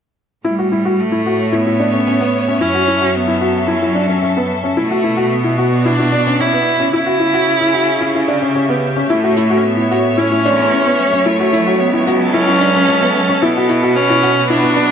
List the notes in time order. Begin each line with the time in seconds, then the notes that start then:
0.45 A2 G3 E4
0.59 F#4
0.72 E4
0.85 F#4
0.90 A3
1.00 A3
1.12 E4
1.26 F#4 C#5
1.42 E5
1.52 B3 E4
1.67 E4
1.80 D4
1.94 C#4
2.07 C#4
2.21 B3
2.48 C#4
2.61 F#2 F#3 C#4 E4
2.74 F#4
2.83 A4
2.88 E4
3.01 F#4
3.16 B3
3.28 C#4 E4
3.41 F#4
3.68 F#3 E4
3.82 E4
3.95 D4
4.08 C#4
4.22 C#4
4.37 B3
4.63 C#4
4.77 B2 A3 E4
4.91 F#4
5.04 E4
5.17 F#4
5.29 B3
5.44 E4
5.58 F#4
5.74 D5
5.85 D4 E4
5.99 E4
6.12 D4
6.26 C#4
6.40 C#4 E4
6.53 B3
6.80 C#4
6.93 C#3 E4
7.06 F#4
7.20 C#4 E4
7.34 F#4
7.60 E4 E5
7.73 F#4
7.90 G4
8.01 E4
8.15 E4
8.28 D4
8.42 C#4
8.55 C#4
8.69 B3
8.96 C#4
9.09 A2 A3 E4
9.23 F#4 C#5
9.36 E4, closed hi-hat
9.47 A3 F#4
9.57 C#4
9.64 B3
9.77 E4
9.91 F#4, closed hi-hat
10.17 C#4 E4
10.31 E4
10.45 E2 D4, closed hi-hat
10.59 C#4
10.72 C#4
10.86 B3
10.98 F#2, closed hi-hat
11.13 C#4
11.25 F#3 A3 E4
11.40 F#4
11.53 E4, closed hi-hat
11.66 C#2 F#4
11.80 B3
11.93 C#4 E4
12.07 F#4, closed hi-hat
12.23 A4
12.33 C#4 E4
12.47 E4
12.61 D4, closed hi-hat
12.75 C#4
12.88 C#4
13.01 B3
13.15 closed hi-hat
13.29 C#4
13.41 B2 B3 E4
13.57 F#4
13.68 E4, closed hi-hat
13.83 F#4
13.95 B3 C#4
14.06 E4 B4
14.22 F#4, closed hi-hat
14.50 D4 E4
14.63 E4
14.76 F#2 D4, closed hi-hat